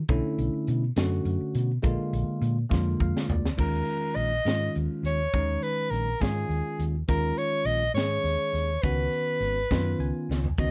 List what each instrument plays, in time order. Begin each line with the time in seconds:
0.09 fingered electric bass B1, tine electric piano D3 A3 C#4 E4, kick, closed hi-hat
0.38 fingered electric bass B1, closed hi-hat
0.53 muted fingered electric bass stroke
0.67 fingered electric bass B2, closed hi-hat
0.96 fingered electric bass F#2, tine electric piano D3 A3 C#4 F#4, snare, closed hi-hat
1.25 fingered electric bass F#2, closed hi-hat
1.40 muted fingered electric bass stroke
1.55 fingered electric bass B2, closed hi-hat
1.82 fingered electric bass A#1, tine electric piano D3 G#3 A#3 F4, kick, closed hi-hat
2.13 fingered electric bass A#1, closed hi-hat
2.28 muted fingered electric bass stroke
2.41 fingered electric bass A#2, closed hi-hat
2.70 fingered electric bass F2, tine electric piano D3 G#3 A#3 F4, kick, snare
3.00 fingered electric bass F2, tine electric piano F5, kick
3.15 muted fingered electric bass stroke, snare
3.29 fingered electric bass D2, tine electric piano D5, floor tom
3.45 snare
3.57 fingered electric bass D#2, tine electric piano D#3 G#3 C#4 F4, soprano saxophone A#4, kick, crash
3.88 closed hi-hat
4.15 fingered electric bass A#1, soprano saxophone D#5, closed hi-hat
4.45 fingered electric bass G#2, tine electric piano D#3 G#3 C#4 F4, snare, closed hi-hat
4.75 fingered electric bass D#2, closed hi-hat
5.03 fingered electric bass D#2, soprano saxophone C#5, closed hi-hat
5.34 fingered electric bass D#2, tine electric piano D#3 G#3 C#4 D#4, kick, closed hi-hat
5.62 soprano saxophone B4, closed hi-hat
5.90 fingered electric bass A#1, soprano saxophone A#4, closed hi-hat
6.20 fingered electric bass G#2, tine electric piano D#3 G#3 C#4 F4, soprano saxophone G#4, kick, snare, closed hi-hat
6.49 fingered electric bass D#2, closed hi-hat
6.79 fingered electric bass D#2, closed hi-hat
7.08 fingered electric bass D#2, tine electric piano D#3 G#3 C#4 F4, soprano saxophone A#4, kick, closed hi-hat
7.38 soprano saxophone C#5, closed hi-hat
7.65 fingered electric bass A#1, soprano saxophone D#5, closed hi-hat
7.94 fingered electric bass G#2, tine electric piano D#3 G#3 C#4 G#4, soprano saxophone C#5, snare, closed hi-hat
8.24 fingered electric bass D#2, closed hi-hat
8.53 fingered electric bass D#2, closed hi-hat
8.82 fingered electric bass C#2, tine electric piano D#3 B3 C#4 F#4, soprano saxophone B4, kick, closed hi-hat
9.13 closed hi-hat
9.40 fingered electric bass G#1, closed hi-hat
9.71 fingered electric bass F#2, tine electric piano D#3 B3 C#4 F4, kick, snare, closed hi-hat
9.99 fingered electric bass C#2, tine electric piano G#5, closed hi-hat
10.29 fingered electric bass C#2, snare
10.44 floor tom
10.58 fingered electric bass C#2, tine electric piano D#3 B3 C#4 F#4, soprano saxophone D#5, kick, closed hi-hat